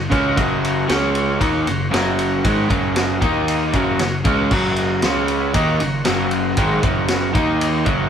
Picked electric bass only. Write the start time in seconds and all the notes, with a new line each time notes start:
Already playing: F#1
0.12 C#2
0.37 F#1
0.90 C#2
1.42 D#2
1.67 F#1
1.93 F#1
2.45 G#1
2.71 F#1
3.22 D#2
3.74 F#1
4.01 F#1
4.26 C#2
4.51 F#1
5.04 C#2
5.55 D#2
5.82 F#1
6.07 F#1
6.57 G#1
6.84 F#1
7.35 D#2
7.87 F#1